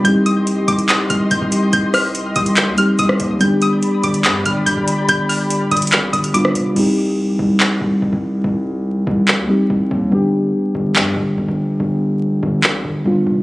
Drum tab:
CC |--------------------------------|--------------------------------|--------------------------------|--------------------------------|
HH |x---x---x---x-x-x---x---x---x---|x---o---x---x-x-x---x---x---x---|x---x---x---x-x-x---x---x---x---|x---o---x---xxxxx---x-x-x---x---|
CP |----------------x---------------|----------------x---------------|----------------x---------------|----------------x---------------|
SD |--------------------------------|----r---------------------r-----|--------------------------------|--------------------------r-----|

CC |x-------------------------------|--------------------------------|--------------------------------|--------------------------------|
HH |--------------------------------|--------------------------------|--------------------------------|--------------------------------|
CP |----------------x---------------|----------------x---------------|----------------x---------------|----------------x---------------|
SD |--------------------------------|--------------------------------|--------------------------------|--------------------------------|